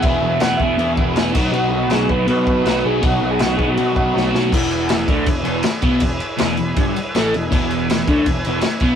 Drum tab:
CC |x-x-x-xx|x-x-x-x-|x-x-x---|xxxxxxxx|
SD |--o---o-|--o---o-|--o---oo|--o---o-|
BD |o--o-o-o|---o-o--|o--o-o--|o--oo--o|

CC |xxxxxxxx|xxxxxxxx|
SD |--o---o-|--o---o-|
BD |o---o---|o--oo--o|